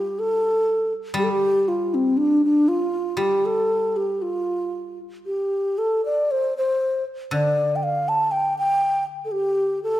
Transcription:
0.00 1.13 G3 soft
0.00 0.21 G4 medium
0.19 0.93 A4 medium
1.14 3.16 G3 medium
1.19 1.25 G4 medium
1.24 1.32 A4 medium
1.30 1.70 G4 medium
1.68 1.96 F4 medium
1.94 2.19 C4 medium
2.17 2.42 D4 medium
2.45 2.70 D4 medium
2.68 3.19 F4 medium
3.17 6.29 G3 soft
3.17 3.47 G4 medium
3.46 3.98 A4 medium
3.96 4.23 G4 medium
4.22 4.99 F4 medium
5.26 5.80 G4 medium
5.78 6.04 A4 medium
6.05 6.33 D5 medium
6.31 6.56 C5 medium
6.58 7.04 C5 medium
7.31 10.00 D3 soft
7.31 7.77 D5 medium
7.76 7.85 G5 soft
7.83 8.10 F5 medium
8.09 8.33 A5 medium
8.31 8.57 G5 medium
8.58 9.04 G5 medium
9.25 9.33 A4 medium
9.32 9.82 G4 medium
9.84 10.00 A4 medium

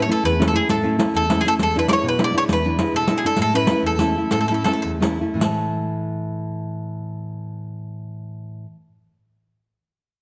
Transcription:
0.02 0.09 C#5 medium
0.08 0.33 A3 medium
0.08 0.33 C#4 soft
0.08 0.33 E4 medium
0.08 0.25 A4 medium
0.24 0.53 E2 medium
0.24 0.46 B4 medium
0.24 riq soft
0.39 0.51 A3 medium
0.39 0.52 C#4 medium
0.39 0.52 E4 medium
0.39 riq medium
0.48 0.54 A4 medium
0.52 0.78 A3 soft
0.52 0.78 C#4 soft
0.52 0.78 E4 soft
0.52 0.69 G#4 medium
0.69 0.99 A2 medium
0.69 1.15 A4 medium
0.69 riq medium
0.83 0.98 A3 medium
0.83 0.98 C#4 soft
0.83 0.97 E4 medium
0.98 1.24 A3 soft
0.98 1.24 C#4 soft
0.98 1.23 E4 medium
0.98 riq medium
1.14 1.44 E2 medium
1.14 1.39 A4 medium
1.14 riq soft
1.30 1.44 A3 medium
1.30 1.44 C#4 medium
1.30 1.45 E4 medium
1.30 riq medium
1.41 1.46 G#4 medium
1.45 1.57 A3 soft
1.45 1.57 C#4 soft
1.45 1.57 E4 soft
1.45 1.53 A4 loud
1.45 riq soft
1.59 1.89 E2 medium
1.59 1.76 A4 medium
1.59 riq medium
1.74 1.88 G#3 soft
1.74 1.89 D4 soft
1.74 1.89 E4 medium
1.74 riq soft
1.79 1.88 B4 medium
1.88 2.14 G#3 soft
1.88 2.14 D4 soft
1.88 2.14 E4 soft
1.88 1.91 D5 medium
1.88 riq medium
1.93 2.06 C#5 medium
2.04 2.33 B2 medium
2.08 2.22 B4 medium
2.19 2.32 G#3 medium
2.19 2.32 D4 medium
2.19 2.33 E4 medium
2.19 riq medium
2.24 2.36 D5 loud
2.33 2.58 G#3 soft
2.33 2.58 D4 soft
2.33 2.58 E4 soft
2.38 2.43 C#5 loud
2.48 2.78 E2 medium
2.48 riq medium
2.53 2.93 B4 medium
2.64 2.78 G#3 soft
2.64 2.78 D4 soft
2.64 2.78 E4 medium
2.64 riq soft
2.79 3.03 G#3 medium
2.79 3.04 D4 soft
2.79 3.04 E4 medium
2.79 riq medium
2.94 3.23 B2 medium
2.94 3.18 A4 loud
3.08 3.23 G#3 medium
3.08 3.24 D4 soft
3.08 3.24 E4 medium
3.08 riq medium
3.18 3.24 G#4 medium
3.25 3.36 G#3 soft
3.25 3.36 D4 soft
3.25 3.36 E4 soft
3.25 3.39 A4 loud
3.37 3.68 A2 medium
3.37 riq medium
3.42 3.55 A4 loud
3.53 3.68 A3 soft
3.53 3.68 C#4 medium
3.53 3.69 E4 medium
3.53 3.83 B4 loud
3.53 riq soft
3.67 3.94 A3 soft
3.67 3.94 C#4 soft
3.67 3.95 E4 medium
3.67 riq medium
3.83 4.14 E2 medium
3.83 4.30 A4 medium
3.99 4.15 A3 medium
3.99 4.16 C#4 soft
3.99 4.16 E4 medium
3.99 riq medium
4.16 4.43 A3 soft
4.16 4.43 C#4 soft
4.16 4.43 E4 soft
4.31 4.65 A2 medium
4.31 4.39 A4 medium
4.31 riq medium
4.41 4.47 A4 medium
4.48 4.66 A3 medium
4.48 4.66 C#4 soft
4.48 4.67 E4 medium
4.48 4.53 A4 medium
4.48 riq soft
4.54 4.63 A4 medium
4.64 4.96 A3 medium
4.64 4.96 C#4 soft
4.64 4.97 E4 medium
4.64 4.72 A4 medium
4.64 riq medium
4.82 5.21 E2 medium
4.82 4.91 A4 medium
5.00 5.19 A3 soft
5.00 5.20 C#4 soft
5.00 5.20 E4 medium
5.00 riq medium
5.20 5.36 A3 soft
5.20 5.37 C#4 soft
5.20 5.37 E4 soft
5.34 8.65 A2 soft
5.34 8.66 E3 soft
5.34 8.68 A3 soft
5.40 5.44 E4 soft
5.40 8.73 C#5 soft
5.40 riq medium
5.44 8.75 A5 soft

